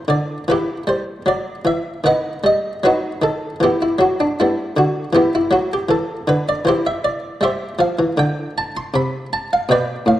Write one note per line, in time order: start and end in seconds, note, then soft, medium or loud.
0.08 0.37 D3 medium
0.08 0.44 D5 medium
0.48 0.77 E3 medium
0.48 0.87 E4 medium
0.48 0.87 G4 medium
0.48 0.83 B4 medium
0.87 1.16 G3 medium
0.87 1.22 C5 medium
1.26 1.54 F#3 medium
1.26 1.61 D5 medium
1.65 1.93 E3 medium
1.65 2.05 E5 medium
2.04 2.33 D#3 medium
2.04 2.42 B4 medium
2.04 2.42 D#5 medium
2.04 2.39 F#5 medium
2.44 2.72 G3 medium
2.44 2.79 D#5 medium
2.84 3.12 F#3 medium
2.84 3.21 D#4 medium
2.84 3.21 F#4 medium
2.84 3.23 B4 medium
3.22 3.49 D#3 medium
3.22 3.55 A4 medium
3.60 3.88 E3 medium
3.60 3.80 B3 medium
3.60 3.80 E4 medium
3.60 3.81 G4 medium
3.82 4.00 E4 medium
3.98 4.26 F#3 medium
3.98 4.19 F#4 medium
4.20 4.38 D4 medium
4.40 4.75 G3 medium
4.40 4.75 B3 medium
4.40 4.77 E4 medium
4.76 5.04 D3 medium
4.76 5.10 F#4 medium
5.13 5.40 E3 medium
5.13 5.33 B3 medium
5.13 5.33 E4 medium
5.13 5.33 G4 medium
5.35 5.53 E4 medium
5.51 5.78 F#3 medium
5.51 5.71 F#4 medium
5.73 5.91 G4 medium
5.89 6.16 E3 medium
5.89 6.28 A4 medium
6.28 6.55 D3 medium
6.28 6.47 B4 medium
6.49 6.67 D5 medium
6.65 7.20 E3 medium
6.65 6.85 E4 medium
6.65 6.85 G4 medium
6.65 6.85 C5 medium
6.87 7.04 E5 medium
7.05 7.42 D5 medium
7.41 7.68 G3 medium
7.41 7.77 G4 medium
7.41 7.78 C5 medium
7.41 7.74 E5 medium
7.79 7.97 F3 medium
7.79 8.12 F5 medium
7.99 8.16 E3 medium
8.17 8.71 D3 medium
8.17 8.50 G5 medium
8.58 8.75 A5 medium
8.77 8.93 C6 medium
8.94 9.47 C3 medium
8.94 9.26 B5 medium
9.33 9.50 A5 medium
9.53 9.69 F5 loud
9.69 9.96 B2 medium
9.69 10.05 B4 medium
9.69 10.05 D5 medium
9.69 10.07 G5 loud
10.06 10.20 A2 medium
10.06 10.20 F5 medium